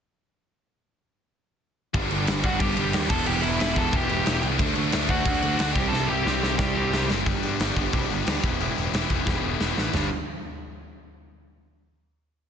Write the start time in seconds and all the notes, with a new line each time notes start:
1.94 G1 G2 D3 G3 B3 D4, kick, crash
2.10 G1 G2 D3 G3 B3 D4, crash
2.27 G1 G2 D3 G3 B3 D4, snare, crash
2.43 G2 D3 G3 B3 D4 F#4 F#5, kick, crash
2.60 G1 G2 D3 G3 B3 D4 G4 G5, kick, crash
2.77 G1 G2 D3 G3 B3 D4, crash
2.93 D#2 G2 D3 G3 B3 D4, snare, crash
3.09 E1 E2 B2 E3 G3 B3 E4 A4 A5, kick, crash
3.26 E1 E2 B2 E3 G3 B3 E4 G4 G5, crash
3.42 E1 E2 B2 E3 G3 B3 E4 E5, crash
3.59 E1 E2 B2 E3 G3 B3 E4 E5, snare, crash
3.75 E2 B2 E3 G3 B3 E4 A4 A5, kick, crash
3.93 E1 E2 B2 E3 G3 B3 E4 G4 G5, kick, crash
4.09 E1 E2 B2 E3 G3 B3 E4, crash
4.26 E1 E2 B2 E3 G3 B3 E4, snare, crash
4.42 C2 E2 B2 E3 G3 B3 E4, crash
4.59 D2 D3 F#3 A3 D4, kick, crash
4.75 D2 D3 F#3 A3 D4, crash
4.92 D2 D3 F#3 A3 D4, snare, crash
5.09 D3 F#3 A3 D4 F#4 F#5, kick, crash
5.25 D2 D3 F#3 A3 D4, kick, crash
5.42 D2 D3 F#3 A3 D4, crash
5.59 D2 D3 F#3 A3 D4, snare, crash
5.73 C2 C3 G3 C4 E4 G4 G5, kick, crash
5.88 C2 G3 C4 E4 A5
5.92 C3 A4, snare
6.07 C2 C3 G3 C4 E4 G4 G5
6.25 C2 C3 G3 C4 E4, snare
6.41 C3 G3 C4 E4, snare
6.58 C2 C3 G3 C4 E4 G4 G5, kick, snare
6.77 C2 C3 G3 C4 E4
6.92 C2 C3 G3 C4 E4, snare
7.08 F#1 C3 G3 C4 E4, snare
7.26 G1 G2 D3 G3 B3 D4 G4, kick, open hi-hat
7.43 G2, open hi-hat
7.60 G1 G2 D3 G3 B3 D4 G4, snare, open hi-hat
7.76 G1 G2 D3 G3 B3 D4 G4, kick, open hi-hat
7.93 C2 G2 D3 G3 B3 D4 G4, kick, open hi-hat
8.10 G1, open hi-hat
8.26 D2 G2 D3 G3 B3 D4 G4, snare, open hi-hat
8.43 E1 E2 B2 E3 B3 E4 G4, kick, open hi-hat
8.60 E1 E2 B2 E3 B3 E4 G4, open hi-hat
8.77 E1, open hi-hat
8.94 E1 E2 B2 E3 B3 E4 G4, snare, open hi-hat
9.09 E1 E2 B2 E3 B3 E4 G4, kick, open hi-hat
9.27 E1 E2 B2 E3 B3 E4 G4, kick, snare
9.44 E1
9.60 E1 E2 B2 E3 B3 E4 G4, snare
9.77 A1 E2 B2 E3 B3 E4 G4, snare
9.93 G1 G2 D3 G3 B3 D4, snare, floor tom, china